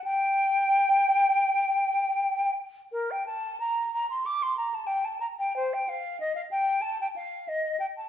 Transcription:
\new Staff \with { instrumentName = "Flute" } { \time 4/4 \key c \dorian \tempo 4 = 90 g''2.~ g''8 r8 | \key bes \major bes'16 g''16 a''8 bes''8 bes''16 c'''16 d'''16 c'''16 bes''16 a''16 g''16 a''16 bes''16 g''16 | c''16 g''16 f''8 ees''16 f''16 g''8 a''16 g''16 f''8 ees''8 g''16 a''16 | }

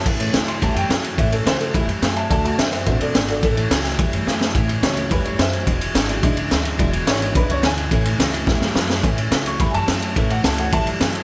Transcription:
<<
  \new Staff \with { instrumentName = "Upright piano" } { \time 4/4 \key a \major \tempo 4 = 214 << { r4. c'''8 a''8 <fis'' g''>4. | e''8 a'8 c''8 a'8 e'8 r4 <gis'' a''>8 | a''8 a''8 e''8 e''8 e''8 d''8 d''8 d''8 | a'2. r4 |
r4 cis''4 b'8 cis''8 e''4~ | e''2 r2 | r4 cis''4 b'8 cis''8 gis''4~ | gis''2 r2 |
r4. cis'''8 b''8 <gis'' a''>4.~ | <gis'' a''>8 fis''8 a''8 fis''8 a''2 | } \\ { r1 | r2. r8 e''8 | e''8 e''8 c''8 c''8 c''8 a'8 a'8 a'8 | r1 |
r2. c''4 | r1 | r1 | r1 |
r1 | r2 e''2 | } >> }
  \new Staff \with { instrumentName = "Upright piano" } { \time 4/4 \key a \major r8 <e a cis'>4. <e a cis'>8 r4. | <e a cis'>4. r2 r8 | <fis a d'>1 | r8 <e a cis'>2.~ <e a cis'>8~ |
<e a cis'>8 r4 <e a cis'>4. r4 | r4. <fis gis d'>8 r2 | <fis gis d'>1 | <e a cis'>8 r4. <e a cis'>8 r4. |
<e a cis'>1 | <e a cis'>8 r4 <e a cis'>8 r2 | }
  \new Staff \with { instrumentName = "Steel-string acoustic guitar" } { \time 4/4 \key a \major <a, e a cis' e'>8 <a cis' e'>8 <e a cis' e'>8 <a cis' e'>8 <a, e a cis' e'>8 <a cis' e'>8 <e a cis' e'>8 <a cis' e'>8 | <a, e a cis' e'>8 <a cis' e'>8 <e a cis' e'>8 <a cis' e'>8 <a, e a cis' e'>8 <a cis' e'>8 <e a cis' e'>8 <a cis' e'>8 | <d a d' fis'>8 <a d' fis'>8 <d a d' fis'>8 <a d' fis'>8 <d a d' fis'>8 <a d' fis'>8 <d a d' fis'>8 <a d' fis'>8 | <a, e a cis' e'>8 <a cis' e'>8 <e a cis' e'>8 <a cis' e'>8 <a, e a cis' e'>8 <a cis' e'>8 <e a cis' e'>8 <a cis' e'>8 |
<a, e a cis' e'>8 <a cis' e'>8 <e a cis' e'>8 <a cis' e'>8 <a, e a cis' e'>8 <a cis' e'>8 <e a cis' e'>8 <a cis' e'>8 | <e, b, e gis d' e'>8 <e gis d' e'>8 <e gis d' e'>8 <e gis d' e'>8 <e, b, e gis d' e'>8 <e gis d' e'>8 <e gis d' e'>8 <e gis d' e'>8 | <e, b, e gis d' e'>8 <e gis d' e'>8 <e gis d' e'>8 <e gis d' e'>8 <e, b, e gis d' e'>8 <e gis d' e'>8 <e gis d' e'>8 <e gis d' e'>8 | <a, e a cis' e'>8 <a cis' e'>8 <e a cis' e'>8 <a cis' e'>8 <a, e a cis' e'>8 <a cis' e'>8 <e a e'>8 <a cis' e'>8 |
<a, e a cis' e'>8 <a cis' e'>8 <e a cis' e'>8 <a cis' e'>8 <a, e a cis' e'>8 <a cis' e'>8 <e a cis' e'>8 <a cis' e'>8 | <a, e a cis' e'>8 <a cis' e'>8 <e a cis' e'>8 <a cis' e'>8 <a, e a cis' e'>8 <a cis' e'>8 <e a cis' e'>8 <a cis' e'>8 | }
  \new Staff \with { instrumentName = "Clean electric guitar" } { \clef bass \time 4/4 \key a \major <a, e>4 <a, fis>4 <a, g>4 <a, fis>4 | <a, e>4 <a, fis>4 <a, g>4 <a, fis>4 | <d a>4 <d b>4 <d c'>4 <d b>4 | <a, e>4 <a, fis>4 <a, g>4 <a, fis>4 |
<a, e>4 <a, fis>4 <a, g>4 <a, fis>4 | <e, b,>4 <e, cis>4 <e, d>4 <e, cis>4 | <e, b,>4 <e, cis>4 <e, d>4 <e, cis>4 | <a, e>4 <a, fis>4 <a, g>4 <a, fis>4 |
<a, e>4 <a, fis>4 <a, g>4 <a, fis>4 | <a, e>4 <a, fis>4 <a, g>4 <a, fis>4 | }
  \new Staff \with { instrumentName = "Upright bass" } { \clef bass \time 4/4 \key a \major a,,4 cis,4 e,8 fis,8 fis,4 | a,,4 cis,4 e,8 fis,8 fis,4 | d,4 fis,4 a,8 b,8 gis,,4 | a,,4 cis,4 e,8 fis,8 fis,4 |
a,,4 cis,4 e,8 fis,8 fis,4 | e,,4 gis,,4 b,,8 cis,8 d,4 | e,,4 gis,,4 b,,8 cis,8 d,4 | a,,4 cis,4 e,8 fis,8 fis,4 |
a,,4 cis,4 e,8 fis,8 fis,4 | a,,4 cis,4 e,8 fis,8 fis,4 | }
  \new DrumStaff \with { instrumentName = "Drums" } \drummode { \time 4/4 <cymc bd>8 cymr8 <cymr sn>8 cymr8 <bd cymr>8 cymr8 <cymr sn>8 cymr8 | <bd cymr>8 cymr8 <cymr sn>8 cymr8 <bd cymr>8 cymr8 <cymr sn>8 cymr8 | <bd cymr>8 cymr8 <cymr sn>8 cymr8 <bd cymr>8 cymr8 <cymr sn>8 cymr8 | <bd cymr>8 cymr8 <cymr sn>8 cymr8 <bd cymr>8 cymr8 sn8 sn8 |
<bd cymr>8 cymr8 <cymr sn>8 cymr8 <bd cymr>8 cymr8 <cymr sn>8 cymr8 | <bd cymr>8 cymr8 <cymr sn>8 cymr8 <bd cymr>8 cymr8 <cymr sn>8 cymr8 | <bd cymr>8 cymr8 <cymr sn>8 cymr8 <bd cymr>8 cymr8 <cymr sn>8 cymr8 | <bd cymr>8 cymr8 <cymr sn>8 cymr8 <bd sn>8 sn8 sn8 sn8 |
<bd cymr>8 cymr8 <cymr sn>8 cymr8 <bd cymr>8 cymr8 <cymr sn>8 cymr8 | <bd cymr>8 cymr8 <cymr sn>8 cymr8 <bd cymr>8 cymr8 <cymr sn>8 cymr8 | }
>>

